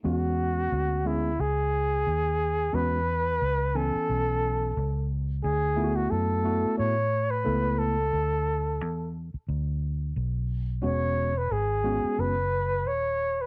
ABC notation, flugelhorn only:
X:1
M:4/4
L:1/16
Q:"Swing 16ths" 1/4=89
K:Emix
V:1 name="Flugelhorn"
F6 E2 G8 | B6 A8 z2 | G3 F A4 c3 B3 A2- | A6 z8 z2 |
c3 B G4 B4 c3 B |]